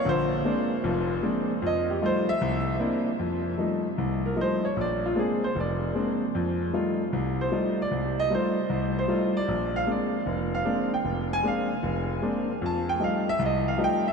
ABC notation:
X:1
M:4/4
L:1/8
Q:"Swing" 1/4=153
K:Fmix
V:1 name="Grand piano"
c6 z2 | e G c =e3 z2 | z4 z B c _d | d F _A c d4- |
d2 z3 c2 d- | d e c3 c2 d- | d f d3 f2 g- | g _a f3 z3 |
a g f =e _e f g =e |]
V:2 name="Grand piano"
[B,,,D,]2 [_A,B,CD] z [F,,,F,,]2 [A,B,CD] z | F,,2 [G,A,EF] z C,,2 [B,CD=E] z | F,,2 [F,G,A,E] z C,,2 [F,G,A,E] z | B,,,2 [_A,B,CD] z F,,,2 [A,B,CD] z |
F,,2 [G,A,EF] z C,,2 [G,A,EF] z | C,,2 [G,A,EF] z C,,2 [G,A,EF] z | B,,,2 [_A,B,CD] z F,,,2 [A,B,CD] z | F,,,2 [_A,B,CD] z F,,,2 [A,B,CD] z |
F,,2 [F,G,A,E] z C,,2 [F,G,A,E] z |]